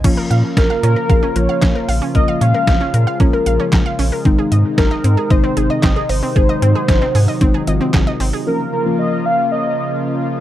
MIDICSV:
0, 0, Header, 1, 7, 480
1, 0, Start_track
1, 0, Key_signature, -5, "minor"
1, 0, Tempo, 526316
1, 39, Time_signature, 4, 2, 24, 8
1, 9488, End_track
2, 0, Start_track
2, 0, Title_t, "Soft synth lead"
2, 0, Program_c, 0, 80
2, 521, Note_on_c, 0, 70, 85
2, 743, Note_off_c, 0, 70, 0
2, 760, Note_on_c, 0, 70, 98
2, 1240, Note_on_c, 0, 73, 105
2, 1254, Note_off_c, 0, 70, 0
2, 1720, Note_off_c, 0, 73, 0
2, 1958, Note_on_c, 0, 75, 114
2, 2182, Note_off_c, 0, 75, 0
2, 2198, Note_on_c, 0, 77, 127
2, 2919, Note_on_c, 0, 70, 98
2, 2933, Note_off_c, 0, 77, 0
2, 3639, Note_off_c, 0, 70, 0
2, 4358, Note_on_c, 0, 70, 93
2, 4582, Note_off_c, 0, 70, 0
2, 4598, Note_on_c, 0, 70, 94
2, 4838, Note_on_c, 0, 72, 107
2, 4852, Note_off_c, 0, 70, 0
2, 5197, Note_on_c, 0, 75, 118
2, 5210, Note_off_c, 0, 72, 0
2, 5557, Note_on_c, 0, 72, 117
2, 5571, Note_off_c, 0, 75, 0
2, 7238, Note_off_c, 0, 72, 0
2, 7721, Note_on_c, 0, 70, 99
2, 7943, Note_off_c, 0, 70, 0
2, 7961, Note_on_c, 0, 70, 91
2, 8183, Note_off_c, 0, 70, 0
2, 8200, Note_on_c, 0, 75, 101
2, 8441, Note_on_c, 0, 77, 112
2, 8454, Note_off_c, 0, 75, 0
2, 8674, Note_off_c, 0, 77, 0
2, 8680, Note_on_c, 0, 75, 111
2, 9363, Note_off_c, 0, 75, 0
2, 9488, End_track
3, 0, Start_track
3, 0, Title_t, "Synth arpeggio sound"
3, 0, Program_c, 1, 84
3, 38, Note_on_c, 1, 61, 91
3, 117, Note_off_c, 1, 61, 0
3, 158, Note_on_c, 1, 70, 84
3, 237, Note_off_c, 1, 70, 0
3, 278, Note_on_c, 1, 77, 83
3, 357, Note_off_c, 1, 77, 0
3, 639, Note_on_c, 1, 77, 82
3, 718, Note_off_c, 1, 77, 0
3, 760, Note_on_c, 1, 61, 96
3, 838, Note_off_c, 1, 61, 0
3, 878, Note_on_c, 1, 70, 81
3, 957, Note_off_c, 1, 70, 0
3, 999, Note_on_c, 1, 77, 85
3, 1078, Note_off_c, 1, 77, 0
3, 1119, Note_on_c, 1, 61, 92
3, 1198, Note_off_c, 1, 61, 0
3, 1240, Note_on_c, 1, 70, 82
3, 1318, Note_off_c, 1, 70, 0
3, 1359, Note_on_c, 1, 77, 83
3, 1437, Note_off_c, 1, 77, 0
3, 1479, Note_on_c, 1, 61, 99
3, 1558, Note_off_c, 1, 61, 0
3, 1599, Note_on_c, 1, 70, 85
3, 1678, Note_off_c, 1, 70, 0
3, 1719, Note_on_c, 1, 77, 85
3, 1798, Note_off_c, 1, 77, 0
3, 1839, Note_on_c, 1, 61, 92
3, 1918, Note_off_c, 1, 61, 0
3, 1959, Note_on_c, 1, 70, 80
3, 2037, Note_off_c, 1, 70, 0
3, 2080, Note_on_c, 1, 77, 88
3, 2158, Note_off_c, 1, 77, 0
3, 2199, Note_on_c, 1, 61, 95
3, 2278, Note_off_c, 1, 61, 0
3, 2320, Note_on_c, 1, 70, 83
3, 2398, Note_off_c, 1, 70, 0
3, 2560, Note_on_c, 1, 61, 91
3, 2638, Note_off_c, 1, 61, 0
3, 2680, Note_on_c, 1, 70, 82
3, 2758, Note_off_c, 1, 70, 0
3, 2800, Note_on_c, 1, 77, 84
3, 2878, Note_off_c, 1, 77, 0
3, 2920, Note_on_c, 1, 61, 97
3, 2998, Note_off_c, 1, 61, 0
3, 3040, Note_on_c, 1, 70, 82
3, 3118, Note_off_c, 1, 70, 0
3, 3159, Note_on_c, 1, 77, 89
3, 3238, Note_off_c, 1, 77, 0
3, 3280, Note_on_c, 1, 61, 94
3, 3358, Note_off_c, 1, 61, 0
3, 3399, Note_on_c, 1, 70, 84
3, 3478, Note_off_c, 1, 70, 0
3, 3518, Note_on_c, 1, 77, 85
3, 3597, Note_off_c, 1, 77, 0
3, 3639, Note_on_c, 1, 61, 94
3, 3717, Note_off_c, 1, 61, 0
3, 3759, Note_on_c, 1, 70, 81
3, 3837, Note_off_c, 1, 70, 0
3, 3879, Note_on_c, 1, 60, 90
3, 3957, Note_off_c, 1, 60, 0
3, 3999, Note_on_c, 1, 68, 80
3, 4078, Note_off_c, 1, 68, 0
3, 4119, Note_on_c, 1, 75, 86
3, 4197, Note_off_c, 1, 75, 0
3, 4479, Note_on_c, 1, 75, 87
3, 4557, Note_off_c, 1, 75, 0
3, 4599, Note_on_c, 1, 60, 98
3, 4677, Note_off_c, 1, 60, 0
3, 4718, Note_on_c, 1, 68, 84
3, 4797, Note_off_c, 1, 68, 0
3, 4838, Note_on_c, 1, 75, 87
3, 4917, Note_off_c, 1, 75, 0
3, 4958, Note_on_c, 1, 60, 92
3, 5037, Note_off_c, 1, 60, 0
3, 5078, Note_on_c, 1, 68, 83
3, 5157, Note_off_c, 1, 68, 0
3, 5198, Note_on_c, 1, 75, 83
3, 5277, Note_off_c, 1, 75, 0
3, 5318, Note_on_c, 1, 60, 100
3, 5397, Note_off_c, 1, 60, 0
3, 5437, Note_on_c, 1, 68, 84
3, 5517, Note_off_c, 1, 68, 0
3, 5558, Note_on_c, 1, 75, 84
3, 5637, Note_off_c, 1, 75, 0
3, 5678, Note_on_c, 1, 60, 95
3, 5757, Note_off_c, 1, 60, 0
3, 5800, Note_on_c, 1, 68, 81
3, 5878, Note_off_c, 1, 68, 0
3, 5920, Note_on_c, 1, 75, 87
3, 5998, Note_off_c, 1, 75, 0
3, 6039, Note_on_c, 1, 60, 98
3, 6118, Note_off_c, 1, 60, 0
3, 6160, Note_on_c, 1, 68, 82
3, 6238, Note_off_c, 1, 68, 0
3, 6400, Note_on_c, 1, 60, 95
3, 6478, Note_off_c, 1, 60, 0
3, 6520, Note_on_c, 1, 68, 84
3, 6598, Note_off_c, 1, 68, 0
3, 6640, Note_on_c, 1, 75, 86
3, 6718, Note_off_c, 1, 75, 0
3, 6761, Note_on_c, 1, 60, 102
3, 6839, Note_off_c, 1, 60, 0
3, 6879, Note_on_c, 1, 68, 83
3, 6958, Note_off_c, 1, 68, 0
3, 7000, Note_on_c, 1, 75, 89
3, 7078, Note_off_c, 1, 75, 0
3, 7120, Note_on_c, 1, 60, 97
3, 7198, Note_off_c, 1, 60, 0
3, 7240, Note_on_c, 1, 68, 88
3, 7318, Note_off_c, 1, 68, 0
3, 7360, Note_on_c, 1, 75, 91
3, 7438, Note_off_c, 1, 75, 0
3, 7480, Note_on_c, 1, 60, 95
3, 7558, Note_off_c, 1, 60, 0
3, 7600, Note_on_c, 1, 68, 80
3, 7678, Note_off_c, 1, 68, 0
3, 9488, End_track
4, 0, Start_track
4, 0, Title_t, "Synth keys"
4, 0, Program_c, 2, 88
4, 38, Note_on_c, 2, 61, 82
4, 39, Note_on_c, 2, 53, 90
4, 39, Note_on_c, 2, 58, 82
4, 39, Note_on_c, 2, 65, 94
4, 537, Note_off_c, 2, 61, 0
4, 538, Note_off_c, 2, 53, 0
4, 538, Note_off_c, 2, 58, 0
4, 538, Note_off_c, 2, 65, 0
4, 998, Note_on_c, 2, 53, 73
4, 998, Note_on_c, 2, 58, 65
4, 998, Note_on_c, 2, 61, 65
4, 998, Note_on_c, 2, 68, 81
4, 1123, Note_off_c, 2, 53, 0
4, 1123, Note_off_c, 2, 58, 0
4, 1123, Note_off_c, 2, 61, 0
4, 1123, Note_off_c, 2, 68, 0
4, 1238, Note_on_c, 2, 53, 69
4, 1238, Note_on_c, 2, 61, 63
4, 1238, Note_on_c, 2, 65, 74
4, 1239, Note_on_c, 2, 58, 64
4, 1613, Note_off_c, 2, 53, 0
4, 1613, Note_off_c, 2, 58, 0
4, 1613, Note_off_c, 2, 61, 0
4, 1613, Note_off_c, 2, 65, 0
4, 1957, Note_on_c, 2, 53, 74
4, 1957, Note_on_c, 2, 58, 68
4, 1958, Note_on_c, 2, 61, 68
4, 1958, Note_on_c, 2, 65, 82
4, 2457, Note_off_c, 2, 53, 0
4, 2457, Note_off_c, 2, 58, 0
4, 2457, Note_off_c, 2, 61, 0
4, 2457, Note_off_c, 2, 65, 0
4, 2917, Note_on_c, 2, 53, 75
4, 2917, Note_on_c, 2, 61, 68
4, 2918, Note_on_c, 2, 58, 69
4, 2918, Note_on_c, 2, 65, 83
4, 3043, Note_off_c, 2, 53, 0
4, 3043, Note_off_c, 2, 58, 0
4, 3043, Note_off_c, 2, 61, 0
4, 3043, Note_off_c, 2, 65, 0
4, 3157, Note_on_c, 2, 61, 64
4, 3158, Note_on_c, 2, 53, 70
4, 3158, Note_on_c, 2, 58, 64
4, 3158, Note_on_c, 2, 65, 78
4, 3532, Note_off_c, 2, 53, 0
4, 3532, Note_off_c, 2, 61, 0
4, 3532, Note_off_c, 2, 65, 0
4, 3533, Note_off_c, 2, 58, 0
4, 3877, Note_on_c, 2, 51, 89
4, 3877, Note_on_c, 2, 56, 83
4, 3877, Note_on_c, 2, 60, 80
4, 3877, Note_on_c, 2, 63, 102
4, 4377, Note_off_c, 2, 51, 0
4, 4377, Note_off_c, 2, 56, 0
4, 4377, Note_off_c, 2, 60, 0
4, 4377, Note_off_c, 2, 63, 0
4, 4838, Note_on_c, 2, 51, 75
4, 4838, Note_on_c, 2, 63, 83
4, 4839, Note_on_c, 2, 56, 68
4, 4839, Note_on_c, 2, 60, 69
4, 4963, Note_off_c, 2, 51, 0
4, 4963, Note_off_c, 2, 63, 0
4, 4964, Note_off_c, 2, 56, 0
4, 4964, Note_off_c, 2, 60, 0
4, 5078, Note_on_c, 2, 51, 70
4, 5078, Note_on_c, 2, 56, 63
4, 5078, Note_on_c, 2, 63, 79
4, 5079, Note_on_c, 2, 60, 65
4, 5453, Note_off_c, 2, 51, 0
4, 5453, Note_off_c, 2, 56, 0
4, 5453, Note_off_c, 2, 60, 0
4, 5453, Note_off_c, 2, 63, 0
4, 5798, Note_on_c, 2, 51, 74
4, 5798, Note_on_c, 2, 60, 67
4, 5799, Note_on_c, 2, 56, 71
4, 5799, Note_on_c, 2, 63, 84
4, 6297, Note_off_c, 2, 51, 0
4, 6298, Note_off_c, 2, 56, 0
4, 6298, Note_off_c, 2, 60, 0
4, 6298, Note_off_c, 2, 63, 0
4, 6758, Note_on_c, 2, 51, 91
4, 6758, Note_on_c, 2, 56, 85
4, 6758, Note_on_c, 2, 60, 82
4, 6758, Note_on_c, 2, 63, 101
4, 6883, Note_off_c, 2, 51, 0
4, 6883, Note_off_c, 2, 56, 0
4, 6883, Note_off_c, 2, 60, 0
4, 6883, Note_off_c, 2, 63, 0
4, 6998, Note_on_c, 2, 51, 86
4, 6998, Note_on_c, 2, 56, 78
4, 6998, Note_on_c, 2, 60, 78
4, 6998, Note_on_c, 2, 65, 92
4, 7373, Note_off_c, 2, 51, 0
4, 7373, Note_off_c, 2, 56, 0
4, 7373, Note_off_c, 2, 60, 0
4, 7373, Note_off_c, 2, 65, 0
4, 7719, Note_on_c, 2, 53, 80
4, 7719, Note_on_c, 2, 58, 71
4, 7720, Note_on_c, 2, 61, 71
4, 7720, Note_on_c, 2, 65, 72
4, 7720, Note_on_c, 2, 70, 84
4, 7844, Note_off_c, 2, 53, 0
4, 7844, Note_off_c, 2, 58, 0
4, 7844, Note_off_c, 2, 61, 0
4, 7844, Note_off_c, 2, 65, 0
4, 7844, Note_off_c, 2, 70, 0
4, 7957, Note_on_c, 2, 65, 77
4, 7958, Note_on_c, 2, 70, 83
4, 8020, Note_off_c, 2, 65, 0
4, 8021, Note_off_c, 2, 70, 0
4, 8079, Note_on_c, 2, 53, 75
4, 8079, Note_on_c, 2, 58, 74
4, 8079, Note_on_c, 2, 61, 73
4, 8079, Note_on_c, 2, 65, 72
4, 8079, Note_on_c, 2, 70, 86
4, 8578, Note_off_c, 2, 53, 0
4, 8578, Note_off_c, 2, 58, 0
4, 8578, Note_off_c, 2, 61, 0
4, 8578, Note_off_c, 2, 65, 0
4, 8578, Note_off_c, 2, 70, 0
4, 9488, End_track
5, 0, Start_track
5, 0, Title_t, "Analog synth pad"
5, 0, Program_c, 3, 89
5, 38, Note_on_c, 3, 49, 76
5, 38, Note_on_c, 3, 53, 70
5, 38, Note_on_c, 3, 58, 69
5, 38, Note_on_c, 3, 65, 89
5, 1939, Note_off_c, 3, 58, 0
5, 1961, Note_on_c, 3, 56, 72
5, 3842, Note_off_c, 3, 49, 0
5, 3842, Note_off_c, 3, 53, 0
5, 3842, Note_off_c, 3, 65, 0
5, 3879, Note_on_c, 3, 48, 80
5, 3879, Note_on_c, 3, 51, 73
5, 3879, Note_on_c, 3, 63, 83
5, 5763, Note_off_c, 3, 56, 0
5, 5800, Note_on_c, 3, 54, 75
5, 7682, Note_off_c, 3, 48, 0
5, 7682, Note_off_c, 3, 51, 0
5, 7682, Note_off_c, 3, 63, 0
5, 7700, Note_off_c, 3, 54, 0
5, 7717, Note_on_c, 3, 49, 79
5, 7717, Note_on_c, 3, 53, 73
5, 7717, Note_on_c, 3, 58, 74
5, 7717, Note_on_c, 3, 65, 88
5, 9488, Note_off_c, 3, 49, 0
5, 9488, Note_off_c, 3, 53, 0
5, 9488, Note_off_c, 3, 58, 0
5, 9488, Note_off_c, 3, 65, 0
5, 9488, End_track
6, 0, Start_track
6, 0, Title_t, "Analog synth bass"
6, 0, Program_c, 4, 38
6, 40, Note_on_c, 4, 34, 112
6, 150, Note_off_c, 4, 34, 0
6, 279, Note_on_c, 4, 46, 100
6, 389, Note_off_c, 4, 46, 0
6, 519, Note_on_c, 4, 34, 107
6, 629, Note_off_c, 4, 34, 0
6, 758, Note_on_c, 4, 46, 98
6, 869, Note_off_c, 4, 46, 0
6, 1000, Note_on_c, 4, 34, 105
6, 1110, Note_off_c, 4, 34, 0
6, 1237, Note_on_c, 4, 34, 104
6, 1348, Note_off_c, 4, 34, 0
6, 1479, Note_on_c, 4, 34, 96
6, 1589, Note_off_c, 4, 34, 0
6, 1718, Note_on_c, 4, 34, 106
6, 1828, Note_off_c, 4, 34, 0
6, 1960, Note_on_c, 4, 34, 110
6, 2070, Note_off_c, 4, 34, 0
6, 2198, Note_on_c, 4, 46, 103
6, 2309, Note_off_c, 4, 46, 0
6, 2439, Note_on_c, 4, 34, 103
6, 2549, Note_off_c, 4, 34, 0
6, 2678, Note_on_c, 4, 46, 96
6, 2789, Note_off_c, 4, 46, 0
6, 2919, Note_on_c, 4, 34, 112
6, 3029, Note_off_c, 4, 34, 0
6, 3158, Note_on_c, 4, 34, 102
6, 3269, Note_off_c, 4, 34, 0
6, 3398, Note_on_c, 4, 34, 108
6, 3509, Note_off_c, 4, 34, 0
6, 3637, Note_on_c, 4, 34, 99
6, 3748, Note_off_c, 4, 34, 0
6, 3879, Note_on_c, 4, 32, 108
6, 3989, Note_off_c, 4, 32, 0
6, 4119, Note_on_c, 4, 44, 102
6, 4229, Note_off_c, 4, 44, 0
6, 4358, Note_on_c, 4, 32, 97
6, 4469, Note_off_c, 4, 32, 0
6, 4597, Note_on_c, 4, 44, 100
6, 4708, Note_off_c, 4, 44, 0
6, 4838, Note_on_c, 4, 32, 114
6, 4949, Note_off_c, 4, 32, 0
6, 5079, Note_on_c, 4, 32, 94
6, 5189, Note_off_c, 4, 32, 0
6, 5319, Note_on_c, 4, 32, 92
6, 5429, Note_off_c, 4, 32, 0
6, 5558, Note_on_c, 4, 32, 99
6, 5669, Note_off_c, 4, 32, 0
6, 5799, Note_on_c, 4, 32, 115
6, 5909, Note_off_c, 4, 32, 0
6, 6038, Note_on_c, 4, 44, 98
6, 6149, Note_off_c, 4, 44, 0
6, 6279, Note_on_c, 4, 32, 105
6, 6389, Note_off_c, 4, 32, 0
6, 6519, Note_on_c, 4, 44, 105
6, 6629, Note_off_c, 4, 44, 0
6, 6758, Note_on_c, 4, 32, 104
6, 6869, Note_off_c, 4, 32, 0
6, 7000, Note_on_c, 4, 32, 104
6, 7109, Note_off_c, 4, 32, 0
6, 7240, Note_on_c, 4, 32, 104
6, 7350, Note_off_c, 4, 32, 0
6, 7479, Note_on_c, 4, 32, 106
6, 7589, Note_off_c, 4, 32, 0
6, 9488, End_track
7, 0, Start_track
7, 0, Title_t, "Drums"
7, 39, Note_on_c, 9, 49, 90
7, 40, Note_on_c, 9, 36, 101
7, 40, Note_on_c, 9, 42, 59
7, 131, Note_off_c, 9, 36, 0
7, 131, Note_off_c, 9, 42, 0
7, 131, Note_off_c, 9, 49, 0
7, 281, Note_on_c, 9, 42, 79
7, 372, Note_off_c, 9, 42, 0
7, 519, Note_on_c, 9, 36, 114
7, 519, Note_on_c, 9, 38, 113
7, 522, Note_on_c, 9, 42, 74
7, 610, Note_off_c, 9, 36, 0
7, 610, Note_off_c, 9, 38, 0
7, 613, Note_off_c, 9, 42, 0
7, 761, Note_on_c, 9, 42, 71
7, 853, Note_off_c, 9, 42, 0
7, 999, Note_on_c, 9, 36, 120
7, 1000, Note_on_c, 9, 42, 69
7, 1091, Note_off_c, 9, 36, 0
7, 1091, Note_off_c, 9, 42, 0
7, 1238, Note_on_c, 9, 42, 75
7, 1330, Note_off_c, 9, 42, 0
7, 1477, Note_on_c, 9, 42, 78
7, 1479, Note_on_c, 9, 36, 116
7, 1483, Note_on_c, 9, 38, 126
7, 1483, Note_on_c, 9, 39, 98
7, 1568, Note_off_c, 9, 42, 0
7, 1571, Note_off_c, 9, 36, 0
7, 1574, Note_off_c, 9, 38, 0
7, 1574, Note_off_c, 9, 39, 0
7, 1720, Note_on_c, 9, 46, 67
7, 1811, Note_off_c, 9, 46, 0
7, 1959, Note_on_c, 9, 42, 57
7, 1960, Note_on_c, 9, 36, 105
7, 2051, Note_off_c, 9, 36, 0
7, 2051, Note_off_c, 9, 42, 0
7, 2202, Note_on_c, 9, 42, 76
7, 2293, Note_off_c, 9, 42, 0
7, 2439, Note_on_c, 9, 36, 112
7, 2439, Note_on_c, 9, 38, 117
7, 2442, Note_on_c, 9, 42, 76
7, 2530, Note_off_c, 9, 36, 0
7, 2530, Note_off_c, 9, 38, 0
7, 2533, Note_off_c, 9, 42, 0
7, 2680, Note_on_c, 9, 42, 75
7, 2772, Note_off_c, 9, 42, 0
7, 2918, Note_on_c, 9, 42, 70
7, 2919, Note_on_c, 9, 36, 119
7, 3009, Note_off_c, 9, 42, 0
7, 3010, Note_off_c, 9, 36, 0
7, 3158, Note_on_c, 9, 42, 74
7, 3249, Note_off_c, 9, 42, 0
7, 3396, Note_on_c, 9, 42, 78
7, 3399, Note_on_c, 9, 36, 117
7, 3401, Note_on_c, 9, 38, 124
7, 3401, Note_on_c, 9, 39, 101
7, 3487, Note_off_c, 9, 42, 0
7, 3490, Note_off_c, 9, 36, 0
7, 3492, Note_off_c, 9, 38, 0
7, 3492, Note_off_c, 9, 39, 0
7, 3638, Note_on_c, 9, 46, 66
7, 3729, Note_off_c, 9, 46, 0
7, 3878, Note_on_c, 9, 42, 61
7, 3879, Note_on_c, 9, 36, 109
7, 3969, Note_off_c, 9, 42, 0
7, 3970, Note_off_c, 9, 36, 0
7, 4120, Note_on_c, 9, 42, 79
7, 4211, Note_off_c, 9, 42, 0
7, 4358, Note_on_c, 9, 36, 114
7, 4358, Note_on_c, 9, 38, 117
7, 4361, Note_on_c, 9, 42, 75
7, 4449, Note_off_c, 9, 36, 0
7, 4450, Note_off_c, 9, 38, 0
7, 4452, Note_off_c, 9, 42, 0
7, 4600, Note_on_c, 9, 42, 75
7, 4691, Note_off_c, 9, 42, 0
7, 4838, Note_on_c, 9, 36, 126
7, 4838, Note_on_c, 9, 42, 67
7, 4929, Note_off_c, 9, 42, 0
7, 4930, Note_off_c, 9, 36, 0
7, 5078, Note_on_c, 9, 42, 73
7, 5169, Note_off_c, 9, 42, 0
7, 5316, Note_on_c, 9, 42, 79
7, 5319, Note_on_c, 9, 36, 119
7, 5321, Note_on_c, 9, 38, 120
7, 5321, Note_on_c, 9, 39, 102
7, 5407, Note_off_c, 9, 42, 0
7, 5410, Note_off_c, 9, 36, 0
7, 5412, Note_off_c, 9, 38, 0
7, 5412, Note_off_c, 9, 39, 0
7, 5557, Note_on_c, 9, 46, 65
7, 5649, Note_off_c, 9, 46, 0
7, 5799, Note_on_c, 9, 36, 104
7, 5799, Note_on_c, 9, 42, 58
7, 5890, Note_off_c, 9, 36, 0
7, 5890, Note_off_c, 9, 42, 0
7, 6041, Note_on_c, 9, 42, 80
7, 6132, Note_off_c, 9, 42, 0
7, 6278, Note_on_c, 9, 36, 114
7, 6279, Note_on_c, 9, 38, 116
7, 6281, Note_on_c, 9, 42, 75
7, 6369, Note_off_c, 9, 36, 0
7, 6370, Note_off_c, 9, 38, 0
7, 6373, Note_off_c, 9, 42, 0
7, 6520, Note_on_c, 9, 46, 54
7, 6611, Note_off_c, 9, 46, 0
7, 6758, Note_on_c, 9, 42, 73
7, 6759, Note_on_c, 9, 36, 122
7, 6849, Note_off_c, 9, 42, 0
7, 6850, Note_off_c, 9, 36, 0
7, 6999, Note_on_c, 9, 42, 77
7, 7090, Note_off_c, 9, 42, 0
7, 7237, Note_on_c, 9, 42, 78
7, 7239, Note_on_c, 9, 36, 121
7, 7243, Note_on_c, 9, 38, 122
7, 7243, Note_on_c, 9, 39, 107
7, 7328, Note_off_c, 9, 42, 0
7, 7331, Note_off_c, 9, 36, 0
7, 7334, Note_off_c, 9, 38, 0
7, 7334, Note_off_c, 9, 39, 0
7, 7480, Note_on_c, 9, 46, 66
7, 7571, Note_off_c, 9, 46, 0
7, 9488, End_track
0, 0, End_of_file